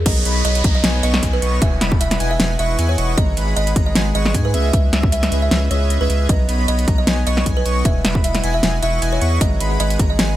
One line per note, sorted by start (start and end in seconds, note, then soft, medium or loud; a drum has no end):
0.06 0.24 B1 loud
0.06 0.14 B3 medium
0.06 0.14 B4 medium
0.06 0.14 C#5 medium
0.06 0.35 D#5 loud
0.06 0.14 D#5 medium
0.06 0.14 A#5 medium
0.06 kick loud
0.06 closed hi-hat medium
0.06 crash loud
0.06 downlifter medium
0.25 0.43 B1 loud
0.25 0.43 B3 medium
0.25 0.43 B4 medium
0.25 0.43 C#5 medium
0.25 0.43 D#5 medium
0.25 0.43 B5 medium
0.25 closed hi-hat medium
0.45 0.63 B1 loud
0.45 0.62 B3 medium
0.45 0.62 B4 medium
0.45 0.62 C#5 medium
0.45 0.66 D#5 loud
0.45 0.62 D#5 medium
0.45 0.62 B5 medium
0.45 closed hi-hat medium
0.55 closed hi-hat medium
0.64 0.82 B1 loud
0.64 0.73 B3 medium
0.64 0.73 B4 medium
0.64 0.73 C#5 medium
0.64 0.73 D#5 medium
0.64 0.73 A#5 loud
0.64 kick loud
0.64 closed hi-hat medium
0.75 0.96 D#5 medium
0.84 1.02 B1 loud
0.84 0.92 B3 medium
0.84 0.92 B4 medium
0.84 0.92 C#5 medium
0.84 0.92 D#5 medium
0.84 0.92 G#5 medium
0.84 snare loud
0.84 closed hi-hat medium
1.03 1.21 B1 loud
1.03 1.21 B3 medium
1.03 1.21 B4 medium
1.03 1.21 C#5 medium
1.03 1.25 D#5 medium
1.03 1.21 D#5 medium
1.03 1.21 C#6 loud
1.03 closed hi-hat medium
1.14 snare medium
1.23 1.40 B1 loud
1.23 1.40 B3 medium
1.23 1.40 B4 medium
1.23 1.40 C#5 medium
1.23 1.40 D#5 medium
1.23 1.40 G#5 medium
1.23 kick medium
1.23 closed hi-hat medium
1.33 1.55 B4 loud
1.42 1.60 B1 loud
1.42 1.60 B3 loud
1.42 1.60 B4 medium
1.42 1.60 C#5 medium
1.42 1.60 D#5 medium
1.42 1.60 C#6 loud
1.42 closed hi-hat medium
1.62 1.79 E1 loud
1.62 1.70 E4 medium
1.62 1.70 B4 medium
1.62 1.70 D#5 medium
1.62 1.91 E5 loud
1.62 1.70 F#5 medium
1.62 1.70 G#5 medium
1.62 kick loud
1.62 closed hi-hat medium
1.81 1.99 E1 loud
1.81 1.99 E4 medium
1.81 1.99 B4 medium
1.81 1.99 D#5 medium
1.81 1.99 F#5 medium
1.81 1.99 B5 medium
1.81 snare medium
1.81 closed hi-hat medium
1.92 kick loud
2.01 2.18 E1 loud
2.01 2.18 E4 medium
2.01 2.18 B4 medium
2.01 2.18 D#5 medium
2.01 2.22 E5 loud
2.01 2.18 F#5 medium
2.01 2.18 B5 medium
2.01 closed hi-hat medium
2.11 snare medium
2.11 closed hi-hat medium
2.20 2.38 E1 loud
2.20 2.29 E4 loud
2.20 2.29 B4 medium
2.20 2.29 D#5 medium
2.20 2.29 F#5 medium
2.20 2.29 G#5 loud
2.20 closed hi-hat medium
2.31 2.52 E5 medium
2.40 2.57 E1 loud
2.40 2.48 E4 medium
2.40 2.48 B4 medium
2.40 2.48 D#5 medium
2.40 2.48 F#5 medium
2.40 2.48 G#5 medium
2.40 snare loud
2.40 closed hi-hat medium
2.59 2.77 E1 loud
2.59 2.76 E4 medium
2.59 2.76 B4 medium
2.59 2.77 D#5 medium
2.59 2.81 E5 loud
2.59 2.77 F#5 medium
2.59 2.76 C#6 loud
2.59 2.77 C#6 loud
2.59 closed hi-hat medium
2.79 2.96 E2 medium
2.79 2.96 E4 medium
2.79 2.96 B4 medium
2.79 2.96 D#5 medium
2.79 2.96 F#5 medium
2.79 2.96 G#5 medium
2.79 closed hi-hat medium
2.89 3.10 C#5 loud
2.98 3.16 E1 loud
2.98 3.15 E4 loud
2.98 3.15 B4 medium
2.98 3.15 D#5 medium
2.98 3.15 F#5 medium
2.98 3.15 C#6 loud
2.98 closed hi-hat medium
3.18 3.35 G#1 loud
3.18 3.26 G#3 medium
3.18 3.26 G#4 medium
3.18 3.26 B4 medium
3.18 3.47 D#5 loud
3.18 3.26 F#5 medium
3.18 3.26 A#5 medium
3.18 kick loud
3.18 closed hi-hat medium
3.37 3.55 G#1 loud
3.37 3.54 G#3 medium
3.37 3.54 G#4 medium
3.37 3.54 B4 medium
3.37 3.54 F#5 medium
3.37 3.54 B5 medium
3.37 closed hi-hat medium
3.56 3.74 G#1 medium
3.56 3.74 G#3 medium
3.56 3.74 G#4 medium
3.56 3.74 B4 medium
3.56 3.78 D#5 loud
3.56 3.74 F#5 medium
3.56 3.74 B5 medium
3.56 closed hi-hat medium
3.67 closed hi-hat medium
3.76 3.94 G#1 loud
3.76 3.85 G#3 medium
3.76 3.85 G#4 medium
3.76 3.85 B4 medium
3.76 3.85 F#5 medium
3.76 3.85 A#5 loud
3.76 kick loud
3.76 closed hi-hat medium
3.86 4.08 D#5 medium
3.95 4.13 G#1 loud
3.95 4.04 G#3 medium
3.95 4.04 G#4 medium
3.95 4.04 B4 medium
3.95 4.04 F#5 medium
3.95 4.04 G#5 medium
3.95 snare loud
3.95 closed hi-hat medium
4.15 4.36 G#1 loud
4.15 4.32 G#3 medium
4.15 4.32 G#4 medium
4.15 4.32 B4 medium
4.15 4.37 D#5 medium
4.15 4.32 F#5 medium
4.15 4.32 C#6 loud
4.15 closed hi-hat medium
4.25 snare medium
4.34 4.55 G#2 loud
4.34 4.52 G#3 medium
4.34 4.52 G#4 medium
4.34 4.52 B4 medium
4.34 4.52 F#5 medium
4.34 4.52 G#5 medium
4.34 kick medium
4.34 closed hi-hat medium
4.45 4.66 B4 medium
4.54 4.72 C#2 loud
4.54 4.71 C#4 loud
4.54 4.71 G#4 medium
4.54 4.71 B4 medium
4.54 4.71 D#5 medium
4.54 4.71 E5 loud
4.54 closed hi-hat medium
4.73 4.91 C#2 loud
4.73 4.82 C#4 medium
4.73 4.82 G#4 medium
4.73 4.82 B4 medium
4.73 4.82 D#5 medium
4.73 5.03 E5 loud
4.73 4.82 E5 medium
4.73 kick loud
4.73 closed hi-hat medium
4.93 5.11 C#2 loud
4.93 5.10 C#4 medium
4.93 5.10 G#4 medium
4.93 5.10 B4 medium
4.93 5.10 D#5 medium
4.93 5.10 E5 medium
4.93 snare medium
4.93 closed hi-hat medium
5.03 kick loud
5.12 5.30 C#2 medium
5.12 5.30 C#4 medium
5.12 5.30 G#4 medium
5.12 5.30 B4 medium
5.12 5.30 D#5 medium
5.12 5.34 E5 loud
5.12 5.30 E5 medium
5.12 closed hi-hat medium
5.23 snare medium
5.23 closed hi-hat medium
5.32 5.50 C#2 loud
5.32 5.40 C#4 medium
5.32 5.40 G#4 medium
5.32 5.40 B4 medium
5.32 5.40 D#5 medium
5.32 5.40 E5 loud
5.32 closed hi-hat medium
5.42 5.64 E5 medium
5.51 5.69 C#2 loud
5.51 5.60 C#4 medium
5.51 5.60 G#4 medium
5.51 5.60 B4 medium
5.51 5.60 D#5 medium
5.51 5.60 E5 medium
5.51 snare loud
5.51 closed hi-hat medium
5.71 5.99 C#2 loud
5.71 5.98 C#4 medium
5.71 5.98 G#4 medium
5.71 5.98 B4 medium
5.71 5.92 C#5 loud
5.71 5.98 D#5 medium
5.71 5.98 E5 medium
5.71 closed hi-hat medium
5.90 closed hi-hat medium
6.01 6.08 C#2 loud
6.01 6.08 C#4 loud
6.01 6.08 G#4 medium
6.01 6.08 B4 medium
6.01 6.22 B4 loud
6.01 6.08 D#5 medium
6.01 6.08 E5 loud
6.10 6.28 C#2 loud
6.10 6.27 C#4 medium
6.10 6.27 G#4 medium
6.10 6.27 B4 medium
6.10 6.27 D#5 medium
6.10 6.27 E5 medium
6.10 closed hi-hat medium
6.29 6.47 B1 loud
6.29 6.38 B3 medium
6.29 6.38 B4 medium
6.29 6.38 C#5 medium
6.29 6.58 D#5 loud
6.29 6.38 D#5 medium
6.29 6.38 A#5 medium
6.29 kick loud
6.29 closed hi-hat medium
6.49 6.66 B1 loud
6.49 6.66 B3 medium
6.49 6.66 B4 medium
6.49 6.66 C#5 medium
6.49 6.66 D#5 medium
6.49 6.66 B5 medium
6.49 closed hi-hat medium
6.68 6.86 B1 loud
6.68 6.86 B3 medium
6.68 6.86 B4 medium
6.68 6.86 C#5 medium
6.68 6.90 D#5 loud
6.68 6.86 D#5 medium
6.68 6.86 B5 medium
6.68 closed hi-hat medium
6.79 closed hi-hat medium
6.88 7.05 B1 loud
6.88 6.96 B3 medium
6.88 6.96 B4 medium
6.88 6.96 C#5 medium
6.88 6.96 D#5 medium
6.88 6.96 A#5 loud
6.88 kick loud
6.88 closed hi-hat medium
6.98 7.19 D#5 loud
7.07 7.25 B1 loud
7.07 7.16 B3 medium
7.07 7.16 B4 medium
7.07 7.16 C#5 medium
7.07 7.16 D#5 medium
7.07 7.16 G#5 medium
7.07 snare loud
7.07 closed hi-hat medium
7.27 7.44 B1 medium
7.27 7.44 B3 medium
7.27 7.44 B4 medium
7.27 7.44 C#5 medium
7.27 7.48 D#5 medium
7.27 7.44 D#5 medium
7.27 7.44 C#6 loud
7.27 closed hi-hat medium
7.37 snare medium
7.46 7.64 B1 loud
7.46 7.64 B3 medium
7.46 7.64 B4 medium
7.46 7.64 C#5 medium
7.46 7.64 D#5 medium
7.46 7.63 G#5 medium
7.46 7.64 G#5 medium
7.46 kick medium
7.46 closed hi-hat medium
7.57 7.78 B4 loud
7.66 7.83 B1 loud
7.66 7.83 B3 loud
7.66 7.83 B4 medium
7.66 7.83 C#5 medium
7.66 7.83 D#5 medium
7.66 7.83 C#6 loud
7.66 closed hi-hat medium
7.85 8.03 E1 loud
7.85 7.94 E4 medium
7.85 7.94 B4 medium
7.85 7.94 D#5 medium
7.85 8.14 E5 loud
7.85 7.94 F#5 medium
7.85 7.94 G#5 medium
7.85 kick loud
7.85 closed hi-hat medium
8.05 8.22 E1 loud
8.05 8.22 E4 medium
8.05 8.22 B4 medium
8.05 8.22 D#5 medium
8.05 8.22 F#5 medium
8.05 8.22 B5 medium
8.05 snare medium
8.05 closed hi-hat medium
8.15 kick loud
8.24 8.42 E1 loud
8.24 8.41 E4 medium
8.24 8.41 B4 medium
8.24 8.41 D#5 medium
8.24 8.46 E5 loud
8.24 8.41 F#5 medium
8.24 8.41 B5 medium
8.24 closed hi-hat medium
8.35 snare medium
8.35 closed hi-hat medium
8.44 8.61 E1 loud
8.44 8.52 E4 medium
8.44 8.52 B4 medium
8.44 8.52 D#5 medium
8.44 8.52 F#5 medium
8.44 8.52 G#5 loud
8.44 closed hi-hat medium
8.54 8.75 E5 loud
8.63 8.81 E1 loud
8.63 8.72 E4 medium
8.63 8.72 B4 medium
8.63 8.72 D#5 medium
8.63 8.72 F#5 medium
8.63 8.72 G#5 medium
8.63 snare loud
8.63 closed hi-hat medium
8.82 9.00 E1 loud
8.82 9.00 E4 medium
8.82 9.00 B4 medium
8.82 9.00 D#5 medium
8.82 9.04 E5 loud
8.82 9.00 F#5 medium
8.82 9.00 C#6 loud
8.82 closed hi-hat medium
9.02 9.20 E1 loud
9.02 9.19 E4 medium
9.02 9.19 B4 medium
9.02 9.19 D#5 medium
9.02 9.19 F#5 medium
9.02 9.19 G#5 medium
9.02 closed hi-hat medium
9.12 9.34 C#5 loud
9.21 9.39 E2 loud
9.21 9.39 E4 loud
9.21 9.39 B4 medium
9.21 9.39 D#5 medium
9.21 9.39 F#5 medium
9.21 9.39 C#6 loud
9.21 closed hi-hat medium
9.41 9.59 G#1 loud
9.41 9.50 G#3 medium
9.41 9.50 G#4 medium
9.41 9.49 B4 medium
9.41 9.70 D#5 loud
9.41 9.49 F#5 medium
9.41 9.49 A#5 medium
9.41 9.50 A#5 medium
9.41 kick loud
9.41 closed hi-hat medium
9.60 9.78 G#1 loud
9.60 9.78 G#3 medium
9.60 9.78 G#4 medium
9.60 9.78 B4 medium
9.60 9.78 F#5 medium
9.60 9.78 B5 medium
9.60 closed hi-hat medium
9.80 9.98 G#1 loud
9.80 9.97 G#3 medium
9.80 9.97 G#4 medium
9.80 9.97 B4 medium
9.80 10.01 D#5 loud
9.80 9.97 F#5 medium
9.80 9.97 B5 medium
9.80 closed hi-hat medium
9.90 closed hi-hat medium
9.99 10.17 G#1 loud
9.99 10.08 G#3 medium
9.99 10.08 G#4 medium
9.99 10.08 B4 medium
9.99 10.08 F#5 medium
9.99 10.08 A#5 loud
9.99 kick loud
9.99 closed hi-hat medium
10.10 10.31 D#5 medium
10.19 10.37 G#1 loud
10.19 10.27 G#3 medium
10.19 10.27 G#4 medium
10.19 10.27 B4 medium
10.19 10.27 F#5 medium
10.19 10.27 G#5 medium
10.19 snare loud
10.19 closed hi-hat medium